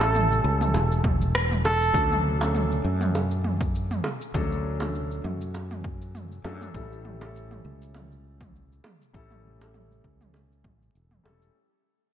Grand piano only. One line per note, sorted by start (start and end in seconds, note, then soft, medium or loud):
0.00 1.95 G3 medium
0.00 1.94 A3 medium
0.00 1.94 C#4 medium
0.00 0.02 E4 medium
0.00 1.61 E4 medium
0.00 0.03 A4 loud
0.00 1.62 A4 medium
1.93 2.36 F#3 medium
1.93 2.36 A3 medium
1.93 2.37 C#4 medium
1.93 2.37 D4 medium
1.93 2.37 A4 medium
2.39 4.30 F#3 medium
2.39 4.31 A3 medium
2.39 4.31 C#4 medium
2.43 4.32 D4 medium
2.43 4.32 A4 medium
4.34 4.57 F#3 medium
4.34 4.58 A3 medium
4.34 4.58 C#4 medium
4.34 4.58 D4 medium
4.34 4.59 A4 loud
4.79 6.40 F#3 medium
4.79 6.41 A3 medium
4.79 6.41 C#4 medium
4.83 6.42 D4 medium
4.83 6.42 A4 medium
6.45 6.71 F#3 medium
6.45 6.71 A3 medium
6.45 6.72 C#4 medium
6.45 6.72 D4 medium
6.45 6.72 A4 medium
6.75 7.17 G3 medium
6.75 7.17 A3 medium
6.75 7.17 C#4 medium
6.75 7.18 E4 medium
6.75 7.18 A4 medium
7.20 9.10 G3 medium
7.20 9.11 A3 medium
7.20 9.12 C#4 medium
7.20 9.12 E4 medium
7.24 9.13 A4 medium
9.13 9.37 G3 medium
9.13 9.38 A3 medium
9.13 9.38 C#4 medium
9.13 9.38 E4 medium
9.13 9.38 A4 loud
9.59 11.20 G3 medium
9.59 11.21 A3 medium
9.59 11.21 C#4 medium
9.59 11.22 E4 medium
9.64 11.22 A4 medium
11.24 11.51 G3 medium
11.24 11.51 A3 medium
11.24 11.51 C#4 medium
11.24 11.52 E4 medium
11.24 11.52 A4 medium